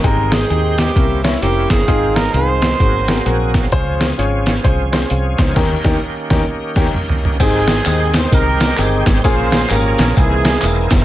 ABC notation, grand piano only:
X:1
M:4/4
L:1/8
Q:"Swing" 1/4=130
K:Ab
V:1 name="Grand piano"
[A,CDEGB] z [A,CEG] z [CD=EB] [CDEd] [CDEB] z | [CEFA] z [CEFA] z [C_GAB] [CGAB] [CGAB] z | [DFAc] z [DFAd] z [DFAc] [DFAc] [Af] [Ec] | [E,DEGB] [E,DEGB] z [DEGB] z [DEGB] z2 |
[CEGA] z [CEGA] z [CEGB] z [CEGB] z | [B,DFA] z [B,DFG] z [B,C=E^G] z [B,CEB] z |]
V:2 name="Grand piano" clef=bass
A,,3 z C,3 z | A,,3 z A,,3 z | D,3 z4 z | z8 |
A,,3 z4 z | B,,3 z C,3 z |]